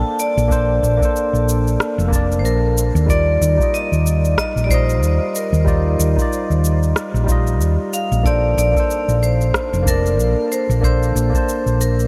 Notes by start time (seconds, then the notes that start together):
Already playing: A#3 D4 A4 C5 D5 A5
0.19 D5, cabasa
0.37 A#1, cabasa
0.48 A#3 D4 A4, kick, cabasa
0.52 C5
0.83 A#1, cabasa
0.97 A#3 D4
1.01 A4 C5, kick, cabasa
1.16 cabasa
1.33 A#1, cabasa
1.49 cabasa
1.67 cabasa
1.80 cross-stick, cabasa
1.98 F1, cabasa
2.08 A#3 D4, kick
2.13 D5 A5, cabasa
2.32 cabasa
2.39 C5
2.44 A#1 A#4, cabasa
2.78 cabasa
2.95 D#2, cabasa
3.06 G3 D#4 F4 D5, kick, cabasa
3.10 D5
3.41 D#2, cabasa
3.55 G3 D#4
3.59 F4 D#5, kick, cabasa
3.74 D#5, cabasa
3.92 D#2, cabasa
4.07 cabasa
4.25 cabasa
4.38 D#5, kick, cross-stick, cabasa
4.56 A#1, cabasa
4.64 G3 D5
4.69 D#4 F4 C5, kick, cabasa
4.74 D#5
4.90 cabasa
5.03 D#2, cabasa
5.35 A#4, cabasa
5.53 D#2, cabasa
5.64 G3 D#4 F4 D5, kick, cabasa
5.99 D#2, cabasa
6.14 G3 D#4, kick
6.19 F4 D5, cabasa
6.33 cabasa
6.50 D#2, cabasa
6.65 cabasa
6.83 cabasa
6.96 cross-stick, cabasa
7.14 A#1, cabasa
7.24 G3 D#4, kick
7.29 F4 D#5, cabasa
7.47 cabasa
7.61 D#2, cabasa
7.93 F5, cabasa
8.12 A#1, cabasa
8.23 A#3 D4 A4 C5 D5, kick, cabasa
8.57 A#1 D5, cabasa
8.72 A#3 D4
8.76 A4 C5, kick, cabasa
8.91 cabasa
9.08 A#1, cabasa
9.23 C5, cabasa
9.41 cabasa
9.54 kick, cross-stick, cabasa
9.73 F1, cabasa
9.82 A#3 D4, kick
9.87 A#4 D5 A5, cabasa
10.06 cabasa
10.18 A#1, cabasa
10.52 C5, cabasa
10.69 A#1, cabasa
10.81 A#3 D4 A4 C5, kick, cabasa
11.03 cabasa
11.15 A#1, cabasa
11.30 A#3 D4, kick
11.35 C5 A5, cabasa
11.49 cabasa
11.66 A#1, cabasa
11.81 A#4, cabasa
12.00 cabasa